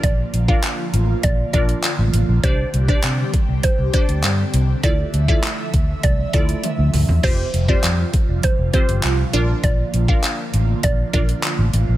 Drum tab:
CC |----------------|----------------|----------------|x---------------|
HH |x-x-x-x-x-xxx-x-|x-x-x-x-x-xxx-x-|x-x-x-x-x-xxx-o-|--x-x-x-x-xxx-x-|
CP |----x-------x---|----x-------x---|----x-----------|----x-------x---|
T1 |----------------|----------------|------------o---|----------------|
T2 |----------------|----------------|--------------o-|----------------|
FT |----------------|----------------|---------------o|----------------|
BD |o--o----o-o-----|o--o--o-o-o-----|o--o--o-o-o-----|o--o--o-o-o-----|

CC |----------------|
HH |x-x-x-x-x-xxx-x-|
CP |----x-------x---|
T1 |----------------|
T2 |----------------|
FT |----------------|
BD |o--o----o-o-----|